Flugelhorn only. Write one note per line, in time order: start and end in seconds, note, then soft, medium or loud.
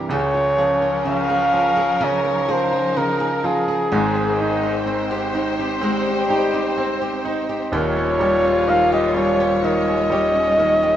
0.14 1.03 C#5 loud
1.08 2.06 F5 loud
2.05 2.53 C#5 loud
2.52 2.99 C5 loud
2.98 3.47 A#4 loud
3.46 5.35 G#4 loud
7.74 8.71 C#5 loud
8.70 8.93 F5 loud
8.94 9.15 D#5 loud
9.16 9.60 C#5 loud
9.65 10.97 D#5 loud